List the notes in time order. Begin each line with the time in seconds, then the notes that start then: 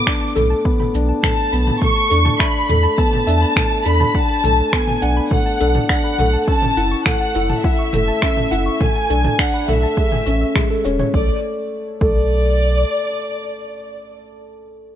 Already playing: A3 B3 D6
0.07 D4, finger snap, kick
0.21 A5
0.35 B1 A3 A4, mid tom, shaker
0.50 A5
0.65 B3 B5, kick
0.79 B5, mid tom
0.94 B1 D4, shaker
1.09 A5
1.23 A3 A4 A5, finger snap, kick, mid tom
1.38 A5
1.52 B1 B3 B5, shaker
1.67 B5, mid tom
1.82 A3 C#6, kick, mid tom
1.96 A5
2.10 E2 D4 A4, shaker
2.25 A5, mid tom
2.39 D4 E5 B5, finger snap, kick
2.54 B5
2.69 E2 A3, mid tom, shaker
2.83 A5
2.98 B3 A4 A5, kick
3.13 A5, mid tom
3.27 E2 D4 E5, shaker
3.42 B5
3.56 A3, finger snap, kick, mid tom
3.71 A5
3.85 E2 D4 A4 B5, shaker
4.00 A5, mid tom
4.15 D4 F#5 A5, kick
4.29 B5
4.44 B1 A3, mid tom, shaker
4.58 A5
4.73 B3 A4 G#5, finger snap, kick
4.88 A5, mid tom
5.02 B1 D4 F#5, shaker
5.17 B5
5.31 A3 F#5, kick, mid tom
5.46 A5
5.60 B1 D4 A4, shaker
5.75 A5, mid tom
5.89 D4 F#5, finger snap, kick
6.04 B5
6.19 B1 A3, mid tom, shaker
6.33 A5
6.47 C#4 A4 A5, kick
6.62 A5, mid tom
6.77 F#1 E4 F#5, shaker
6.91 C#6
7.05 A3 F#5, finger snap, kick, mid tom
7.21 A5
7.35 F#1 E4 A4, shaker
7.49 A5, mid tom
7.64 E4 E5 F#5, kick
7.79 C#6
7.93 F#1 A3, mid tom, shaker
8.08 A5
8.22 C#4 A4, finger snap, kick
8.37 A5, mid tom
8.51 F#1 E4 F#5, shaker
8.66 C#6
8.81 A3 G#5, kick, mid tom
8.95 A5
9.10 B1 D4 A4, shaker
9.24 A5, mid tom
9.39 D4 F#5, finger snap, kick
9.54 B5
9.68 B1 A3 E5, mid tom, shaker
9.83 A5
9.97 A3 G#4, kick
10.12 G#5, mid tom
10.26 A1 C#4, shaker
10.41 E5
10.55 G#3 G#4, finger snap, kick, mid tom
10.70 A4
10.85 E1 C#4 C#5, shaker
10.99 C#5, mid tom
11.14 B1 A3 A4 D5, kick
12.01 B1 A3 A4 D5, kick